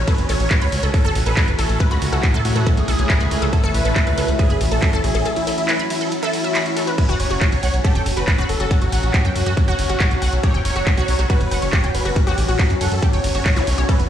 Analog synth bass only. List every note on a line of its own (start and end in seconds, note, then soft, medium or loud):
0.18 0.25 A1 medium
0.29 0.36 A1 loud
0.40 0.46 A1 medium
0.61 0.68 C#2 medium
0.72 0.79 C#2 loud
0.83 0.90 C#2 loud
1.05 1.11 A1 medium
1.15 1.22 A1 loud
1.26 1.33 A1 medium
1.48 1.54 A1 medium
1.59 1.65 A1 loud
1.69 1.76 A1 medium
1.91 1.98 C#2 medium
2.02 2.08 C#2 loud
2.13 2.19 C#2 medium
2.34 2.41 A2 medium
2.45 2.52 A2 medium
2.56 2.62 A2 loud
2.77 2.84 B1 medium
2.88 2.95 B1 loud
2.99 3.05 B1 medium
3.20 3.27 C#2 medium
3.31 3.38 C#2 loud
3.42 3.49 C#2 medium
3.64 3.70 A1 medium
3.74 3.81 A1 loud
3.85 3.92 A1 loud
4.07 4.13 C#2 medium
4.18 4.24 C#2 medium
4.28 4.35 C#2 loud
4.50 4.57 A1 medium
4.61 4.67 A1 loud
4.72 4.78 A1 medium
4.93 5.00 A1 medium
5.04 5.10 A1 loud
5.15 5.21 A1 medium
7.09 7.16 F#1 medium
7.20 7.26 F#1 loud
7.31 7.37 F#1 loud
7.52 7.59 B1 medium
7.63 7.69 B1 medium
7.74 7.80 B1 medium
7.95 8.02 F#1 medium
8.06 8.13 F#1 loud
8.17 8.23 F#1 medium
8.38 8.45 F#1 medium
8.49 8.56 F#1 loud
8.60 8.67 F#1 medium
8.82 8.88 A1 medium
8.92 8.99 A1 loud
9.03 9.10 A1 medium
9.25 9.31 F#2 medium
9.36 9.42 F#2 loud
9.46 9.53 F#2 loud
9.68 9.75 G1 medium
9.79 9.85 G1 loud
9.90 9.96 G1 medium
10.11 10.18 B1 medium
10.22 10.28 B1 loud
10.33 10.39 B1 medium
10.54 10.61 F#1 medium
10.65 10.72 F#1 loud
10.76 10.82 F#1 medium
10.97 11.04 B1 medium
11.08 11.15 B1 loud
11.19 11.26 B1 loud
11.41 11.47 F#1 medium
11.51 11.58 F#1 loud
11.62 11.69 F#1 loud
11.84 11.90 F#1 medium
11.95 12.01 F#1 loud
12.05 12.12 F#1 medium
12.27 12.34 A1 medium
12.38 12.44 A1 loud
12.49 12.55 A1 medium
12.70 12.77 F#2 medium
12.81 12.87 F#2 medium
12.92 12.98 F#2 medium
13.13 13.20 G1 medium
13.24 13.31 G1 loud
13.35 13.41 G1 loud
13.56 13.63 B1 medium
13.67 13.74 B1 loud
13.78 13.85 B1 medium
14.00 14.06 A1 medium